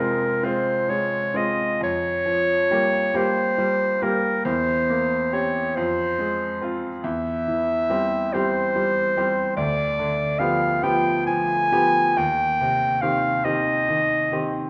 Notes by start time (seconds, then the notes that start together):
Already playing: F2 C3 G#3 C4 F4 A#4
0.43 G#3 C4 F4 C5
0.89 G#3 C#5
1.34 G#3 C4 F4 D#5
1.81 F2 C#5
2.26 F3
2.71 G3 A#3 G4
3.14 G3 A#3 G4 C5
3.58 G3
4.02 G3 A#3 G4 A#4
4.45 E2 C5
4.90 A#3
5.33 C4 G4 C#5
5.76 F2 C5
6.19 G#3
6.61 C4 F4
7.04 E2 E5
7.47 E3
7.89 G3 C4 G4
8.33 G3 C4 G4 C5
8.76 G3
9.17 G3 C4 G4
9.56 D2 D5
9.99 D3
10.39 F3 B3 G4 F5
10.83 F3 B3 G4 G5
11.26 F3 G#5
11.72 F3 B3 G4
12.17 D#2 G5
12.61 C3
13.01 D#3 C4 G4 F5
13.44 D#3 C4 G4 D#5
13.89 D#3
14.32 D#3 C4 G4